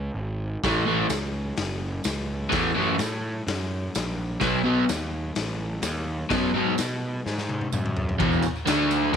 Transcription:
0.14 picked electric bass G#1
0.64 picked electric bass A1, overdriven electric guitar A2 E3 A3, kick, snare, open hi-hat
0.86 overdriven electric guitar A2 E3 A3
1.09 picked electric bass C#2, snare, open hi-hat, tambourine
1.57 picked electric bass F#1, snare, open hi-hat
2.04 picked electric bass C#2, snare, open hi-hat, tambourine
2.49 picked electric bass E2, overdriven electric guitar A2 E3 A3, kick, snare, open hi-hat
2.74 picked electric bass F#2, overdriven electric guitar A2 E3 A3
2.98 picked electric bass A2, snare, open hi-hat, tambourine
3.47 picked electric bass F#2, snare, open hi-hat
3.95 picked electric bass A#1, snare, open hi-hat, tambourine
4.40 picked electric bass B1, overdriven electric guitar B2 F#3 B3, kick, snare, open hi-hat
4.64 overdriven electric guitar B2 F#3 B3
4.89 picked electric bass D#2, snare, open hi-hat, tambourine
5.35 picked electric bass A1, snare, open hi-hat
5.82 picked electric bass D#2, snare, open hi-hat, tambourine
6.29 picked electric bass F#2, overdriven electric guitar B2 F#3 B3, kick, snare, open hi-hat
6.53 picked electric bass G#2, overdriven electric guitar B2 F#3 B3
6.78 picked electric bass B2, snare, open hi-hat, tambourine
7.26 picked electric bass G#2, snare
7.38 snare
7.49 high tom
7.61 high tom
7.72 picked electric bass F#2, mid tom, tambourine
7.86 mid tom
7.97 floor tom
8.09 floor tom
8.19 picked electric bass E1, overdriven electric guitar E2 B2 E3, kick, ride
8.32 tambourine
8.42 muted picked electric bass stroke, muted overdriven electric guitar stroke, ride, tambourine
8.56 tambourine
8.66 picked electric bass D2, overdriven electric guitar D3 A3 D4, snare, ride, tambourine
8.91 ride, tambourine
9.13 overdriven electric guitar A2 E3

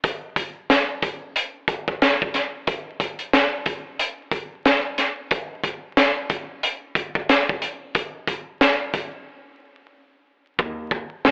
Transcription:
0.04 kick, closed hi-hat
0.36 kick, closed hi-hat
0.70 snare, closed hi-hat
1.02 kick, closed hi-hat
1.36 closed hi-hat
1.68 kick, closed hi-hat
1.88 kick
2.02 snare, closed hi-hat
2.22 kick
2.34 snare, closed hi-hat
2.67 kick, closed hi-hat
3.00 kick, closed hi-hat
3.19 closed hi-hat
3.33 snare, closed hi-hat
3.66 kick, closed hi-hat
3.99 closed hi-hat
4.31 kick, closed hi-hat
4.65 snare, closed hi-hat
4.98 snare, closed hi-hat
5.31 kick, closed hi-hat
5.64 kick, closed hi-hat
5.97 snare, closed hi-hat
6.30 kick, closed hi-hat
6.63 closed hi-hat
6.95 kick, closed hi-hat
7.15 kick
7.29 snare, closed hi-hat
7.49 kick
7.62 closed hi-hat
7.95 kick, closed hi-hat
8.27 kick, closed hi-hat
8.61 snare, closed hi-hat
8.94 kick, closed hi-hat
10.59 upright bass D#2, kick
10.91 kick
11.25 upright bass A#1, snare

